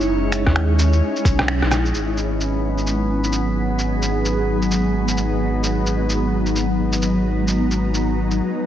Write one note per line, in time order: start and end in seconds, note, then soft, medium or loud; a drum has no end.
0.00 0.45 F#1 medium
0.00 1.95 G#3 medium
0.00 1.96 C#4 medium
0.00 3.27 C#4 medium
0.00 1.95 D#4 medium
0.00 1.94 E4 medium
0.00 1.94 G#4 medium
0.00 1.96 C#5 medium
0.00 shaker soft
0.32 finger snap medium
0.32 cabasa medium
0.32 shaker medium
0.47 1.01 D#2 medium
0.47 kick medium
0.47 cross-stick soft
0.56 finger snap loud
0.79 cabasa medium
0.79 shaker medium
0.93 shaker soft
1.16 shaker soft
1.25 1.60 B1 loud
1.25 kick loud
1.25 cabasa medium
1.25 shaker medium
1.39 cross-stick medium
1.48 finger snap loud
1.62 1.93 A#1 medium
1.62 cross-stick soft
1.71 cross-stick medium
1.71 cabasa medium
1.71 shaker medium
1.85 shaker soft
1.94 8.41 G#1 medium
1.94 8.66 F#3 medium
1.94 8.41 B3 medium
1.94 8.41 B4 medium
1.94 shaker soft
2.17 shaker medium
2.31 8.66 G#3 medium
2.40 8.66 B3 medium
2.40 shaker soft
2.78 shaker soft
2.87 6.51 G#4 medium
2.87 shaker soft
3.00 8.66 D#4 medium
3.24 shaker medium
3.32 shaker soft
3.79 shaker medium
4.02 shaker medium
4.25 shaker soft
4.62 shaker soft
4.71 shaker medium
5.08 shaker medium
5.17 shaker medium
5.63 shaker soft
5.86 shaker medium
6.09 shaker soft
6.36 8.66 A#5 medium
6.46 shaker soft
6.56 shaker soft
6.92 shaker medium
7.02 shaker medium
7.48 shaker soft
7.71 shaker soft
7.94 shaker soft
8.31 shaker soft